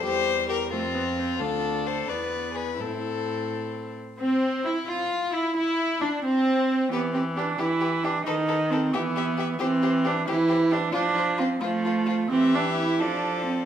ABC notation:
X:1
M:6/8
L:1/8
Q:3/8=88
K:C
V:1 name="Violin"
c2 _B F3 | A2 c d2 B | A4- A z | C2 E F2 E |
E2 D C3 | B B B B B B | B B B e e e | c c c c c c |
c c c c c c | e3 d3 |]
V:2 name="Violin"
G2 G C3 | F2 A B2 ^G | E4- E z | C2 E F2 E |
E2 D C3 | G G G G G G | A A A G G G | G G G G G G |
F F F F F F | G3 A3 |]
V:3 name="Cello"
E,,3 F,,3 | D,,3 E,,3 | A,,4- A,, z | C2 E F2 E |
E2 D C3 | B, C D E2 D | ^D2 C B,3 | C2 D E2 D |
D2 C A,3 | C D E D2 C |]
V:4 name="Viola"
G,3 A, B, C | D3 B,3 | C4- C z | C2 E F2 E |
E2 D C3 | E,3 E,3 | ^D,3 E,3 | E,3 E,3 |
F,3 F,3 | E,3 F,3 |]